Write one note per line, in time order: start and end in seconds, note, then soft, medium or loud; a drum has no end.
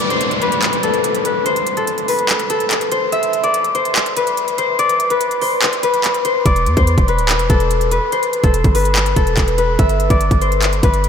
0.00 0.16 B4 medium
0.00 1.64 D5 loud
0.00 downlifter medium
0.10 0.48 C5 medium
0.10 closed hi-hat medium
0.21 closed hi-hat medium
0.31 closed hi-hat medium
0.42 1.25 B4 medium
0.42 closed hi-hat medium
0.52 closed hi-hat medium
0.62 clap loud
0.62 closed hi-hat medium
0.73 closed hi-hat medium
0.83 1.77 A4 medium
0.83 closed hi-hat medium
0.94 closed hi-hat medium
1.04 closed hi-hat medium
1.15 closed hi-hat medium
1.25 1.52 B4 medium
1.25 closed hi-hat medium
1.46 2.14 C5 medium
1.46 closed hi-hat medium
1.56 closed hi-hat medium
1.67 closed hi-hat medium
1.77 2.50 A4 medium
1.77 closed hi-hat medium
1.87 closed hi-hat medium
1.98 closed hi-hat medium
2.08 2.98 B4 medium
2.08 closed hi-hat medium
2.08 open hi-hat medium
2.19 closed hi-hat medium
2.29 clap loud
2.29 closed hi-hat medium
2.39 closed hi-hat medium
2.50 4.70 A4 medium
2.50 closed hi-hat medium
2.60 closed hi-hat medium
2.71 clap medium
2.71 closed hi-hat medium
2.81 closed hi-hat medium
2.92 3.74 C5 medium
2.92 closed hi-hat medium
3.12 4.85 E5 loud
3.12 closed hi-hat medium
3.23 closed hi-hat medium
3.33 closed hi-hat medium
3.44 4.78 D5 medium
3.44 closed hi-hat medium
3.54 closed hi-hat medium
3.64 closed hi-hat soft
3.75 4.23 C5 medium
3.75 closed hi-hat medium
3.85 closed hi-hat medium
3.96 clap loud
3.96 closed hi-hat medium
4.06 closed hi-hat medium
4.17 4.64 B4 medium
4.17 closed hi-hat medium
4.27 closed hi-hat medium
4.37 closed hi-hat medium
4.48 closed hi-hat medium
4.58 5.16 C5 medium
4.58 closed hi-hat medium
4.79 6.45 D5 loud
4.79 closed hi-hat medium
4.89 closed hi-hat medium
5.00 closed hi-hat medium
5.10 5.48 B4 medium
5.10 closed hi-hat medium
5.21 closed hi-hat medium
5.31 closed hi-hat medium
5.41 5.89 C5 medium
5.41 open hi-hat medium
5.62 clap loud
5.62 closed hi-hat medium
5.73 closed hi-hat medium
5.83 6.31 B4 medium
5.83 closed hi-hat medium
5.94 closed hi-hat medium
6.04 clap medium
6.04 closed hi-hat medium
6.14 closed hi-hat medium
6.25 6.76 C5 medium
6.25 closed hi-hat medium
6.46 6.68 E1 loud
6.46 8.30 D5 medium
6.46 kick loud
6.46 closed hi-hat medium
6.56 closed hi-hat medium
6.66 6.76 E2 loud
6.66 closed hi-hat medium
6.77 6.97 E2 loud
6.77 7.14 C5 medium
6.77 kick loud
6.77 closed hi-hat medium
6.87 closed hi-hat medium
6.98 7.20 E1 loud
6.98 kick medium
6.98 closed hi-hat medium
7.08 7.91 B4 medium
7.08 closed hi-hat medium
7.18 7.36 D1 loud
7.18 closed hi-hat medium
7.29 clap loud
7.29 closed hi-hat medium
7.34 7.49 E1 loud
7.39 closed hi-hat medium
7.50 8.00 E1 loud
7.50 8.43 A4 medium
7.50 kick medium
7.50 closed hi-hat medium
7.60 closed hi-hat medium
7.71 closed hi-hat medium
7.81 closed hi-hat medium
7.91 8.18 B4 medium
7.91 closed hi-hat medium
8.12 8.81 C5 medium
8.12 closed hi-hat medium
8.23 closed hi-hat medium
8.33 closed hi-hat medium
8.44 8.64 E1 loud
8.44 9.16 A4 medium
8.44 kick loud
8.44 closed hi-hat medium
8.54 closed hi-hat medium
8.64 9.14 G1 loud
8.64 kick medium
8.64 closed hi-hat medium
8.75 9.58 B4 medium
8.75 closed hi-hat medium
8.75 open hi-hat medium
8.85 closed hi-hat medium
8.96 clap loud
8.96 closed hi-hat medium
9.06 closed hi-hat medium
9.16 9.36 E1 loud
9.16 11.09 A4 medium
9.16 kick medium
9.16 closed hi-hat medium
9.27 closed hi-hat medium
9.37 9.77 E1 loud
9.37 kick medium
9.37 clap medium
9.37 closed hi-hat medium
9.48 closed hi-hat medium
9.58 10.48 B4 medium
9.58 closed hi-hat medium
9.79 10.09 G1 loud
9.79 11.09 E5 loud
9.79 kick loud
9.79 closed hi-hat medium
9.89 closed hi-hat medium
10.00 closed hi-hat medium
10.10 10.30 G1 loud
10.10 11.09 D5 medium
10.10 kick loud
10.10 closed hi-hat medium
10.21 closed hi-hat medium
10.31 10.81 G1 loud
10.31 kick medium
10.31 closed hi-hat medium
10.41 10.89 C5 medium
10.41 closed hi-hat medium
10.52 closed hi-hat medium
10.62 clap loud
10.62 closed hi-hat medium
10.73 closed hi-hat medium
10.83 11.09 G1 loud
10.83 11.09 B4 medium
10.83 kick medium
10.83 closed hi-hat medium
10.94 closed hi-hat medium
11.04 closed hi-hat medium